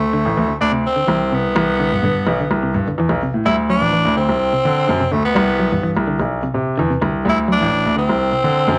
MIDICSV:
0, 0, Header, 1, 5, 480
1, 0, Start_track
1, 0, Tempo, 475436
1, 1566, Time_signature, 4, 2, 24, 8
1, 8871, End_track
2, 0, Start_track
2, 0, Title_t, "Tenor saxophone"
2, 0, Program_c, 0, 66
2, 0, Note_on_c, 0, 57, 87
2, 569, Note_off_c, 0, 57, 0
2, 616, Note_on_c, 0, 62, 107
2, 722, Note_off_c, 0, 62, 0
2, 875, Note_on_c, 0, 60, 100
2, 1357, Note_on_c, 0, 59, 93
2, 1372, Note_off_c, 0, 60, 0
2, 3021, Note_off_c, 0, 59, 0
2, 3491, Note_on_c, 0, 64, 102
2, 3598, Note_off_c, 0, 64, 0
2, 3737, Note_on_c, 0, 62, 113
2, 4178, Note_off_c, 0, 62, 0
2, 4212, Note_on_c, 0, 60, 100
2, 5172, Note_on_c, 0, 57, 82
2, 5187, Note_off_c, 0, 60, 0
2, 5295, Note_off_c, 0, 57, 0
2, 5302, Note_on_c, 0, 59, 89
2, 5977, Note_off_c, 0, 59, 0
2, 7362, Note_on_c, 0, 64, 107
2, 7462, Note_off_c, 0, 64, 0
2, 7596, Note_on_c, 0, 62, 112
2, 8029, Note_off_c, 0, 62, 0
2, 8058, Note_on_c, 0, 60, 105
2, 8871, Note_off_c, 0, 60, 0
2, 8871, End_track
3, 0, Start_track
3, 0, Title_t, "Clean electric guitar"
3, 0, Program_c, 1, 27
3, 135, Note_on_c, 1, 50, 85
3, 277, Note_off_c, 1, 50, 0
3, 377, Note_on_c, 1, 52, 70
3, 451, Note_off_c, 1, 52, 0
3, 486, Note_on_c, 1, 50, 69
3, 633, Note_off_c, 1, 50, 0
3, 725, Note_on_c, 1, 48, 75
3, 873, Note_off_c, 1, 48, 0
3, 970, Note_on_c, 1, 50, 64
3, 1039, Note_off_c, 1, 50, 0
3, 1085, Note_on_c, 1, 52, 89
3, 1230, Note_off_c, 1, 52, 0
3, 1337, Note_on_c, 1, 48, 80
3, 1479, Note_off_c, 1, 48, 0
3, 1568, Note_on_c, 1, 52, 88
3, 1712, Note_off_c, 1, 52, 0
3, 1813, Note_on_c, 1, 50, 79
3, 1956, Note_off_c, 1, 50, 0
3, 2060, Note_on_c, 1, 50, 86
3, 2200, Note_off_c, 1, 50, 0
3, 2296, Note_on_c, 1, 52, 78
3, 2369, Note_off_c, 1, 52, 0
3, 2425, Note_on_c, 1, 50, 76
3, 2566, Note_off_c, 1, 50, 0
3, 2654, Note_on_c, 1, 48, 68
3, 2799, Note_off_c, 1, 48, 0
3, 2904, Note_on_c, 1, 50, 70
3, 2969, Note_off_c, 1, 50, 0
3, 3026, Note_on_c, 1, 52, 88
3, 3165, Note_off_c, 1, 52, 0
3, 3261, Note_on_c, 1, 48, 76
3, 3401, Note_off_c, 1, 48, 0
3, 3493, Note_on_c, 1, 55, 87
3, 3636, Note_off_c, 1, 55, 0
3, 3732, Note_on_c, 1, 54, 85
3, 3806, Note_off_c, 1, 54, 0
3, 3851, Note_on_c, 1, 52, 69
3, 3919, Note_off_c, 1, 52, 0
3, 3967, Note_on_c, 1, 52, 83
3, 4112, Note_off_c, 1, 52, 0
3, 4210, Note_on_c, 1, 50, 80
3, 4353, Note_off_c, 1, 50, 0
3, 4574, Note_on_c, 1, 48, 67
3, 4718, Note_off_c, 1, 48, 0
3, 4921, Note_on_c, 1, 50, 84
3, 4999, Note_off_c, 1, 50, 0
3, 5051, Note_on_c, 1, 48, 76
3, 5120, Note_off_c, 1, 48, 0
3, 5166, Note_on_c, 1, 50, 79
3, 5311, Note_off_c, 1, 50, 0
3, 5398, Note_on_c, 1, 55, 89
3, 5546, Note_off_c, 1, 55, 0
3, 5649, Note_on_c, 1, 54, 80
3, 5725, Note_off_c, 1, 54, 0
3, 5774, Note_on_c, 1, 52, 75
3, 5842, Note_off_c, 1, 52, 0
3, 5890, Note_on_c, 1, 52, 90
3, 6034, Note_off_c, 1, 52, 0
3, 6134, Note_on_c, 1, 50, 70
3, 6276, Note_off_c, 1, 50, 0
3, 6493, Note_on_c, 1, 48, 76
3, 6638, Note_off_c, 1, 48, 0
3, 6841, Note_on_c, 1, 50, 89
3, 6919, Note_off_c, 1, 50, 0
3, 6968, Note_on_c, 1, 48, 80
3, 7038, Note_off_c, 1, 48, 0
3, 7082, Note_on_c, 1, 50, 74
3, 7229, Note_off_c, 1, 50, 0
3, 7320, Note_on_c, 1, 55, 82
3, 7467, Note_off_c, 1, 55, 0
3, 7553, Note_on_c, 1, 54, 84
3, 7634, Note_off_c, 1, 54, 0
3, 7680, Note_on_c, 1, 52, 76
3, 7752, Note_off_c, 1, 52, 0
3, 8037, Note_on_c, 1, 50, 72
3, 8185, Note_off_c, 1, 50, 0
3, 8402, Note_on_c, 1, 48, 65
3, 8551, Note_off_c, 1, 48, 0
3, 8763, Note_on_c, 1, 50, 94
3, 8841, Note_off_c, 1, 50, 0
3, 8871, End_track
4, 0, Start_track
4, 0, Title_t, "Grand piano"
4, 0, Program_c, 2, 0
4, 0, Note_on_c, 2, 38, 103
4, 258, Note_off_c, 2, 38, 0
4, 258, Note_on_c, 2, 33, 92
4, 356, Note_off_c, 2, 33, 0
4, 375, Note_on_c, 2, 38, 100
4, 485, Note_off_c, 2, 38, 0
4, 613, Note_on_c, 2, 38, 104
4, 824, Note_off_c, 2, 38, 0
4, 1094, Note_on_c, 2, 36, 101
4, 1519, Note_off_c, 2, 36, 0
4, 1574, Note_on_c, 2, 36, 127
4, 1898, Note_off_c, 2, 36, 0
4, 1944, Note_on_c, 2, 43, 89
4, 2034, Note_off_c, 2, 43, 0
4, 2049, Note_on_c, 2, 43, 98
4, 2262, Note_off_c, 2, 43, 0
4, 2288, Note_on_c, 2, 35, 100
4, 2400, Note_off_c, 2, 35, 0
4, 2531, Note_on_c, 2, 36, 102
4, 2743, Note_off_c, 2, 36, 0
4, 2771, Note_on_c, 2, 43, 101
4, 2882, Note_off_c, 2, 43, 0
4, 3008, Note_on_c, 2, 40, 92
4, 3120, Note_off_c, 2, 40, 0
4, 3123, Note_on_c, 2, 35, 95
4, 3228, Note_off_c, 2, 35, 0
4, 3371, Note_on_c, 2, 45, 89
4, 3472, Note_off_c, 2, 45, 0
4, 3487, Note_on_c, 2, 38, 110
4, 3814, Note_off_c, 2, 38, 0
4, 3853, Note_on_c, 2, 33, 83
4, 4067, Note_off_c, 2, 33, 0
4, 4088, Note_on_c, 2, 38, 96
4, 4304, Note_off_c, 2, 38, 0
4, 4330, Note_on_c, 2, 36, 84
4, 4545, Note_off_c, 2, 36, 0
4, 4694, Note_on_c, 2, 50, 87
4, 4904, Note_off_c, 2, 50, 0
4, 4937, Note_on_c, 2, 42, 100
4, 5045, Note_off_c, 2, 42, 0
4, 5179, Note_on_c, 2, 38, 90
4, 5412, Note_off_c, 2, 38, 0
4, 5413, Note_on_c, 2, 36, 121
4, 5737, Note_off_c, 2, 36, 0
4, 5775, Note_on_c, 2, 43, 80
4, 5988, Note_off_c, 2, 43, 0
4, 6023, Note_on_c, 2, 36, 99
4, 6233, Note_off_c, 2, 36, 0
4, 6255, Note_on_c, 2, 35, 86
4, 6468, Note_off_c, 2, 35, 0
4, 6606, Note_on_c, 2, 48, 87
4, 6820, Note_off_c, 2, 48, 0
4, 6855, Note_on_c, 2, 40, 102
4, 6964, Note_off_c, 2, 40, 0
4, 7087, Note_on_c, 2, 36, 95
4, 7323, Note_on_c, 2, 38, 107
4, 7326, Note_off_c, 2, 36, 0
4, 7653, Note_off_c, 2, 38, 0
4, 7693, Note_on_c, 2, 33, 93
4, 7908, Note_off_c, 2, 33, 0
4, 7934, Note_on_c, 2, 38, 86
4, 8148, Note_off_c, 2, 38, 0
4, 8172, Note_on_c, 2, 36, 88
4, 8388, Note_off_c, 2, 36, 0
4, 8521, Note_on_c, 2, 50, 89
4, 8739, Note_off_c, 2, 50, 0
4, 8761, Note_on_c, 2, 42, 100
4, 8871, Note_off_c, 2, 42, 0
4, 8871, End_track
5, 0, Start_track
5, 0, Title_t, "Muted clean electric guitar strokes"
5, 7786, Note_on_c, 9, 29, 90
5, 7887, Note_off_c, 9, 29, 0
5, 8871, End_track
0, 0, End_of_file